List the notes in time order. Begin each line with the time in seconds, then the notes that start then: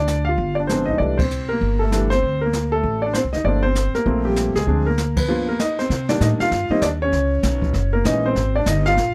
Already playing: D2 D5
0.00 D4
0.07 snare, hi-hat pedal
0.25 F5
0.29 F4
0.38 G1, brush sweep, kick
0.55 D5
0.60 D4
0.67 F3 G#3 B3 D4 C5, snare, hi-hat pedal
0.72 C4
0.86 B1 D#5
0.90 D#4
0.98 C2 E3 G3 A3 D4 D5, brush sweep, kick
1.18 C5, kick, ride
1.22 C4
1.31 hi-hat pedal
1.49 A#3 A#4
1.61 G1, brush sweep, kick
1.79 A4
1.84 A3
1.91 E3 G3 A3 D4, snare, hi-hat pedal
2.10 C5, snare
2.15 C4
2.22 D2, brush sweep, kick
2.41 A#3 A#4
2.53 snare, hi-hat pedal
2.72 A3 A4
2.83 A1, brush sweep, kick
3.02 D5
3.06 D4
3.13 C5, snare, hi-hat pedal
3.17 C4
3.24 C2
3.33 F#1 D#4 D#5, snare
3.44 G1 F3 A3 A#3 C4 D5, brush sweep, kick
3.48 D4
3.63 C5
3.67 C4
3.75 snare, hi-hat pedal
3.94 A#3 A#4, muted upright bass stroke, snare
4.06 A#1 F3 A3 A#3 C4, brush sweep, kick
4.25 G3 G4
4.36 snare, hi-hat pedal
4.55 C#2 G#3 G#4, snare
4.67 D2 F3 G#3 C4 D4, brush sweep, kick
4.86 A#3 A#4
4.98 snare, hi-hat pedal
5.16 B3 B4, kick, ride
5.28 G2 F3 A#3 B3 F4, brush sweep
5.49 A#3 A#4
5.59 D#4 D#5, snare, hi-hat pedal
5.79 C4 C5, snare
5.89 C3, brush sweep, kick, snare
6.09 D#3 G3 A#3 D4 D5, snare
6.20 A2 D#4 D#5, kick, snare, hi-hat pedal
6.40 F4 F5, muted upright bass stroke, snare
6.51 G2, brush sweep, kick, snare
6.69 D#3 G3 A#3 C4 D#4 D#5, muted upright bass stroke
6.82 D#2 D4 D5, kick, snare, hi-hat pedal
7.02 C#4 C#5
7.12 C#2, brush sweep, kick, snare
7.43 B1, kick, snare, hi-hat pedal
7.62 kick
7.73 F#1, brush sweep, snare
7.93 A#3 A#4
8.04 A#1 E3 G#3 A#3 C#4 D#4 D#5, kick, snare, hi-hat pedal
8.26 C4 C5
8.35 G#1, brush sweep, kick, snare
8.56 D4 D5
8.66 G1 D#4 D#5, kick, snare, hi-hat pedal
8.86 F4 F5, snare
8.97 A#1, brush sweep, kick, snare